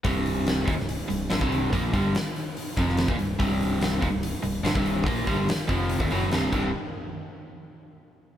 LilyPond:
<<
  \new Staff \with { instrumentName = "Overdriven electric guitar" } { \clef bass \time 4/4 \key c \minor \tempo 4 = 144 <c, g, c>4. <ees, bes,>16 <c, g,>8 r16 <c, g,>8 <g, d>16 <c, g, c>8. | <bes, f bes>8 <g, d g>8 r4. <f, c f>8. <ees, bes,>16 <c, g,>8 | <c, g, c>4. <ees, bes,>16 <c, g,>8 r16 <c, g,>8 <g, d>16 <c, g, c>8. | <bes, f bes>8 <g, d g>8 r8 <f, c f>8. <ees, bes,>16 <fis, des fis>8 <c, g, c>8 <c, g, c>8 |
r1 | }
  \new Staff \with { instrumentName = "Fingered electric bass" } { \clef bass \time 4/4 \key c \minor c,,4. ees,,16 c,,8 r16 c,,8 g,,16 c,,8. | bes,,8 g,,8 r4. f,,8. ees,,16 c,,8 | c,,4. ees,,16 c,,8 r16 c,,8 g,,16 c,,8. | bes,,8 g,,8 r8 f,,8. ees,,16 fis,,8 c,,8 c,,8 |
r1 | }
  \new DrumStaff \with { instrumentName = "Drums" } \drummode { \time 4/4 <hho bd>8 hho8 <hho sn>8 <hho bd>16 sn16 hho8 hho8 <hho sn>16 bd16 hho8 | <hho bd>8 <hho bd>8 <hho sn>8 hho8 hho8 <hho bd>16 sn16 <hho sn>16 bd16 hho8 | <hho bd>8 hho8 <hho sn>8 <hho bd>8 hho8 hho8 <hho sn>16 bd16 hho8 | <hho bd>8 <hho bd>8 <hho sn>8 <hho bd>8 hho16 bd16 hho8 <hho sn>8 <cymc bd>8 |
r4 r4 r4 r4 | }
>>